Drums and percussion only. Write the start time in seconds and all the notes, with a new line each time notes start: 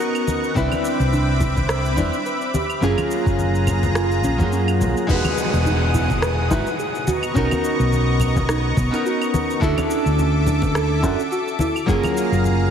0.00 shaker
0.15 claves, shaker
0.27 high conga, shaker
0.44 shaker
0.56 kick, shaker
0.72 high conga, claves, shaker
0.85 shaker
1.00 shaker
1.13 high conga, shaker
1.40 kick, low conga, shaker
1.56 kick, high conga, shaker
1.69 cross-stick, shaker
1.85 shaker
1.97 kick, high conga, shaker
2.13 shaker
2.26 shaker
2.41 shaker
2.54 high conga, shaker
2.70 claves, shaker
2.83 shaker
2.98 high conga, claves, shaker
3.11 shaker
3.26 kick, shaker
3.39 high conga, shaker
3.55 shaker
3.67 low conga, claves, shaker
3.83 high conga, low conga, shaker
3.95 cross-stick, shaker
4.11 shaker
4.24 high conga, shaker
4.40 kick, shaker
4.52 shaker
4.68 claves, shaker
4.81 high conga, shaker
4.97 shaker
5.09 kick, shaker
5.25 high conga, claves, shaker
5.38 shaker
5.54 shaker
5.65 high conga, shaker
5.94 low conga, shaker
6.10 kick, high conga, shaker
6.22 cross-stick, shaker
6.51 kick, high conga, shaker
6.67 shaker
6.79 shaker
6.95 shaker
7.07 high conga, shaker
7.23 claves, shaker
7.36 kick, shaker
7.51 high conga, claves, shaker
7.64 shaker
7.80 shaker
7.92 high conga, shaker
8.20 low conga, claves, shaker
8.36 kick, high conga, shaker
8.49 cross-stick, shaker
8.77 kick, high conga, shaker
8.94 shaker
9.06 shaker
9.22 claves, shaker
9.34 high conga, shaker
9.50 shaker
9.62 kick, shaker
9.78 high conga, claves, shaker
9.91 shaker
10.06 shaker
10.19 high conga, shaker
10.46 low conga, shaker
10.62 kick, high conga, shaker
10.75 cross-stick, shaker
11.03 kick, high conga, shaker
11.20 shaker
11.32 shaker
11.48 shaker
11.59 high conga, shaker
11.76 claves, shaker
11.88 kick, shaker
12.04 high conga, claves, shaker
12.17 shaker
12.33 shaker
12.44 high conga, shaker